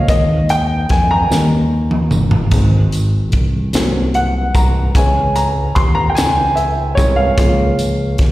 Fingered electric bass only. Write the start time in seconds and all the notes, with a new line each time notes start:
0.08 D#2
0.90 F2
1.30 D#2
2.11 G1
2.52 G#1
3.33 C2
3.73 C2
4.55 C2
4.94 C#2
5.76 D#2
6.16 C#2
6.98 C2
7.38 C#2
8.19 D#2